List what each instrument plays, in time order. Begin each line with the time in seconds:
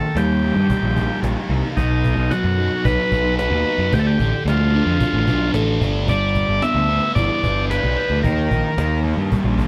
Already playing: distorted electric guitar D#3, transistor combo organ A4
0.15 picked electric bass D#2, distorted electric guitar G3, transistor combo organ G4, cajon slap
0.42 distorted electric guitar D#4, cajon slap
0.56 picked electric bass G2
0.70 distorted electric guitar A#3, cajon bass
0.83 picked electric bass A#1
0.97 distorted electric guitar D#4, cajon bass
1.10 cajon slap
1.22 picked electric bass A#1, distorted electric guitar G4, cajon slap
1.49 picked electric bass C2, distorted electric guitar D#4, cajon slap
1.76 picked electric bass B1, distorted electric guitar B2, transistor combo organ D#4, cajon bass
2.04 cajon bass
2.17 picked electric bass B1
2.31 distorted electric guitar F#3, transistor combo organ F#4, cajon slap
2.44 picked electric bass F#2
2.58 distorted electric guitar D#4, cajon slap
2.85 picked electric bass B1, distorted electric guitar B3, transistor combo organ B4, cajon bass
3.12 picked electric bass B1, distorted electric guitar D#4, cajon bass
3.39 distorted electric guitar F#4, transistor combo organ B4, cajon slap
3.51 picked electric bass D#2
3.66 distorted electric guitar D#4, cajon slap
3.78 picked electric bass F#2
3.93 picked electric bass D2, distorted electric guitar D3, transistor combo organ G4, cajon bass
3.99 transistor combo organ A4
4.07 transistor combo organ G4
4.19 picked electric bass A1, cajon bass
4.45 picked electric bass D2, distorted electric guitar F3, cajon slap
4.49 transistor combo organ F4
4.74 distorted electric guitar D4, cajon slap
4.86 picked electric bass F2
5.00 distorted electric guitar A3, cajon bass
5.13 picked electric bass A1
5.27 picked electric bass B1, distorted electric guitar D4, cajon bass
5.53 picked electric bass A1, distorted electric guitar A4, cajon slap
5.81 picked electric bass G1, distorted electric guitar D4, cajon bass
6.08 picked electric bass G1, distorted electric guitar G3, transistor combo organ D5, cajon bass
6.35 cajon bass, cajon slap
6.48 picked electric bass G1
6.62 distorted electric guitar B3, transistor combo organ E5, cajon slap
6.75 picked electric bass D2
6.89 distorted electric guitar B4, cajon slap
7.15 picked electric bass G1, distorted electric guitar E4, transistor combo organ D5, cajon bass
7.43 picked electric bass G1, distorted electric guitar B4, cajon bass
7.70 transistor combo organ B4, distorted electric guitar D5, cajon slap
7.83 picked electric bass B1
7.97 distorted electric guitar B4, cajon slap
8.10 picked electric bass D2
8.23 picked electric bass D#2, distorted electric guitar D#3, transistor combo organ A#4, cajon bass
8.51 picked electric bass A#1, cajon bass, cajon slap
8.78 picked electric bass D#2, distorted electric guitar D#3, cajon slap
9.04 distorted electric guitar A#3, cajon slap
9.17 picked electric bass G2
9.32 distorted electric guitar G3, cajon bass
9.44 picked electric bass A#1
9.58 distorted electric guitar A#3, cajon bass